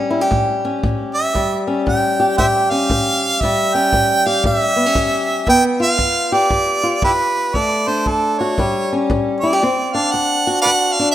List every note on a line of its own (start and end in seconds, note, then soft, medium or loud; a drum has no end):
0.00 0.26 A2 medium
0.00 1.35 G3 medium
0.00 0.63 C#4 soft
0.11 0.21 E4 medium
0.21 1.34 G4 medium
0.31 0.79 A2 medium
0.31 kick medium
0.65 1.38 C#4 medium
0.83 1.31 A2 medium
0.83 kick medium
1.14 1.63 E5 loud
1.34 1.82 A2 medium
1.34 3.44 G3 medium
1.34 kick medium
1.67 2.70 C#4 medium
1.87 2.34 A2 medium
1.87 2.35 G5 medium
1.87 kick medium
2.20 3.46 G4 medium
2.38 2.86 A2 medium
2.38 2.46 C5 medium
2.38 2.46 E5 medium
2.38 2.72 G5 loud
2.38 kick medium
2.71 3.39 C#4 medium
2.71 3.42 F5 loud
2.90 3.38 A2 medium
2.90 kick medium
3.41 3.90 A2 medium
3.41 5.48 G3 medium
3.41 3.76 E5 loud
3.41 kick medium
3.75 4.76 C#4 medium
3.75 4.29 G5 loud
3.93 4.41 A2 medium
3.93 kick medium
4.26 5.46 G4 medium
4.26 4.45 F5 medium
4.44 4.92 A2 medium
4.44 5.45 E5 loud
4.44 kick medium
4.76 4.86 B3 medium
4.86 5.47 C#4 medium
4.95 5.43 A2 medium
4.95 kick medium
5.47 5.95 G2 medium
5.47 7.52 B3 medium
5.47 5.63 G5 loud
5.47 kick medium
5.80 6.82 F4 medium
5.80 6.35 F5 loud
5.98 6.46 G2 medium
5.98 kick medium
6.32 7.52 G4 medium
6.32 7.04 D5 medium
6.50 6.98 G2 medium
6.50 kick medium
6.83 7.52 F4 medium
7.02 7.50 G2 medium
7.02 7.11 E4 medium
7.02 7.13 G4 medium
7.02 7.56 B4 medium
7.02 kick medium
7.54 8.02 D2 medium
7.54 8.56 A3 medium
7.54 7.89 D5 loud
7.54 kick medium
7.87 8.56 D4 medium
7.87 8.09 C5 medium
8.06 8.54 D2 medium
8.06 8.41 A4 medium
8.06 kick medium
8.39 8.56 F#4 medium
8.39 9.10 C#5 medium
8.58 9.06 A2 medium
8.58 9.62 G3 medium
8.58 kick medium
8.93 9.60 C#4 medium
9.10 9.58 A2 medium
9.10 kick medium
9.41 9.53 E4 medium
9.41 9.95 D5 medium
9.53 9.62 G4 medium
9.63 10.10 D2 medium
9.63 11.15 C4 medium
9.94 10.99 D4 medium
9.94 10.13 F5 medium
10.12 10.61 D2 medium
10.12 10.62 F#5 medium
10.47 11.15 F#4 medium
10.62 11.13 D2 medium
10.62 10.71 B4 medium
10.62 10.71 D5 medium
10.62 10.94 F#5 loud
10.93 11.11 F5 medium
10.99 11.15 D4 medium
11.11 11.15 F#5 loud